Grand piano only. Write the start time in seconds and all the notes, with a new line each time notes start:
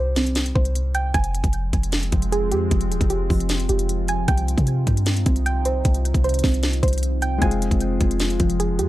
Already playing: G3 C4 D#4 G4
7.38 G#3 C4
7.43 F4 G#4